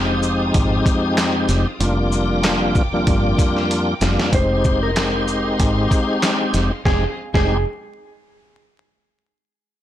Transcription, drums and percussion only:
0.23 shaker
0.54 kick, closed hi-hat
0.86 kick, closed hi-hat, shaker
1.18 snare, clap, closed hi-hat
1.49 snare, closed hi-hat, shaker
1.80 closed hi-hat
2.12 shaker
2.43 snare, clap, closed hi-hat
2.75 kick, shaker
3.07 kick, closed hi-hat
3.38 kick, closed hi-hat, shaker
3.57 snare
3.71 closed hi-hat
4.01 snare, closed hi-hat, shaker
4.20 snare
4.33 kick, closed hi-hat
4.64 kick, shaker
4.96 snare, clap, closed hi-hat
5.28 shaker
5.60 kick, closed hi-hat
5.91 kick, closed hi-hat, shaker
6.23 snare, clap, closed hi-hat
6.54 snare, closed hi-hat, shaker
6.85 kick, snare
7.34 kick, snare

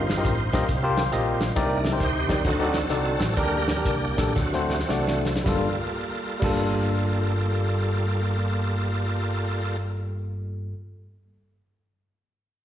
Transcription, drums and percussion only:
0.10 snare, closed hi-hat
0.25 kick, closed hi-hat
0.53 kick, snare, closed hi-hat
0.69 kick, closed hi-hat
0.97 snare, closed hi-hat
1.12 closed hi-hat
1.41 snare, closed hi-hat
1.56 kick, closed hi-hat
1.85 snare, closed hi-hat
2.00 kick, closed hi-hat
2.29 kick, snare, closed hi-hat
2.44 kick, closed hi-hat
2.74 snare, closed hi-hat
2.90 closed hi-hat
3.20 snare, closed hi-hat
3.37 kick, closed hi-hat
3.68 snare, closed hi-hat
3.85 kick, closed hi-hat
4.18 kick, snare, closed hi-hat
4.36 kick, snare
4.53 snare
4.70 snare
4.79 snare
4.89 snare
5.07 snare
5.25 snare
5.36 snare
5.46 kick, snare
6.42 kick, crash

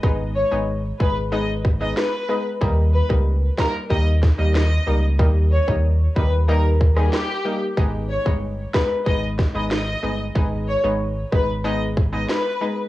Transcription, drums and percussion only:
0.03 kick
1.00 kick
1.65 kick
1.97 cross-stick, snare
2.61 kick
3.10 kick
3.58 kick, cross-stick, snare
3.90 kick
4.23 kick, snare
4.55 cross-stick, snare
5.19 kick
5.68 kick
6.16 kick
6.81 kick
6.97 cross-stick
7.13 cross-stick, snare
7.77 kick
8.26 kick
8.74 kick, cross-stick, snare
9.06 kick
9.39 kick, snare
9.71 cross-stick, snare
10.35 kick
11.32 kick
11.97 kick
12.29 cross-stick, snare

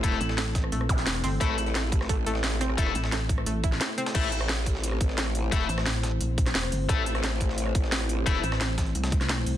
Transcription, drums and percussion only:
0.04 kick, closed hi-hat
0.12 cross-stick, snare
0.21 closed hi-hat
0.29 snare
0.38 snare, closed hi-hat
0.55 kick, snare, closed hi-hat
0.64 cross-stick
0.72 closed hi-hat
0.81 cross-stick
0.89 kick, closed hi-hat
0.98 snare, closed hi-hat
1.07 snare, closed hi-hat
1.15 cross-stick, closed hi-hat
1.24 snare, closed hi-hat, open hi-hat
1.41 kick, closed hi-hat
1.49 cross-stick
1.58 closed hi-hat
1.66 closed hi-hat
1.75 snare, closed hi-hat
1.92 kick, closed hi-hat
2.01 cross-stick, snare
2.09 kick, closed hi-hat
2.26 closed hi-hat
2.35 snare
2.44 snare, closed hi-hat
2.52 closed hi-hat
2.61 cross-stick, closed hi-hat
2.69 cross-stick
2.78 kick, closed hi-hat
2.86 cross-stick, snare
2.95 closed hi-hat
3.04 snare
3.12 snare, closed hi-hat
3.29 kick, closed hi-hat
3.38 cross-stick
3.46 closed hi-hat
3.64 kick, closed hi-hat
3.72 snare
3.81 snare, closed hi-hat
3.89 cross-stick
3.98 closed hi-hat
4.06 snare, closed hi-hat
4.15 kick, closed hi-hat, crash
4.32 closed hi-hat
4.41 cross-stick, closed hi-hat
4.49 snare, closed hi-hat
4.66 kick, closed hi-hat
4.75 snare
4.84 closed hi-hat
4.92 cross-stick
5.01 kick, closed hi-hat
5.09 snare
5.18 snare, closed hi-hat
5.26 cross-stick, closed hi-hat
5.35 closed hi-hat
5.52 kick, closed hi-hat
5.61 snare
5.69 closed hi-hat
5.78 cross-stick, snare
5.86 snare, closed hi-hat
6.03 snare, closed hi-hat
6.21 closed hi-hat
6.38 kick, closed hi-hat
6.46 cross-stick, snare, closed hi-hat
6.55 snare, closed hi-hat
6.63 cross-stick, closed hi-hat
6.72 closed hi-hat, open hi-hat
6.89 kick, closed hi-hat
7.06 closed hi-hat
7.15 cross-stick, closed hi-hat
7.23 snare, closed hi-hat
7.41 kick, closed hi-hat
7.49 snare
7.58 closed hi-hat
7.66 cross-stick
7.75 kick, closed hi-hat
7.84 snare
7.92 snare, closed hi-hat
8.01 cross-stick, closed hi-hat
8.09 closed hi-hat
8.26 kick, closed hi-hat
8.35 snare
8.44 closed hi-hat
8.52 cross-stick, snare
8.61 snare, closed hi-hat
8.78 kick, snare, closed hi-hat
8.86 closed hi-hat
8.95 closed hi-hat
9.04 snare, closed hi-hat
9.12 kick, closed hi-hat
9.21 cross-stick, snare, closed hi-hat
9.29 snare, closed hi-hat
9.38 cross-stick
9.46 closed hi-hat, open hi-hat

